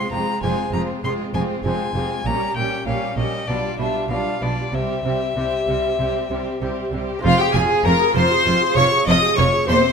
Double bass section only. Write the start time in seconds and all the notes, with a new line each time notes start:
0.12 F1
0.43 F1
0.73 F1
1.03 F1
1.34 F1
1.64 F1
1.94 F1
2.25 A#1
2.56 A#1
2.86 A#1
3.17 A#1
3.48 B1
3.79 B1
4.10 B1
4.42 B1
4.73 C2
5.04 C2
5.36 C2
5.67 C2
5.99 C2
6.30 C2
6.61 C2
6.93 C2
7.24 F1
7.54 F1
7.84 F1
8.16 F1
8.47 F1
8.77 F1
9.08 F1
9.39 F1
9.69 E1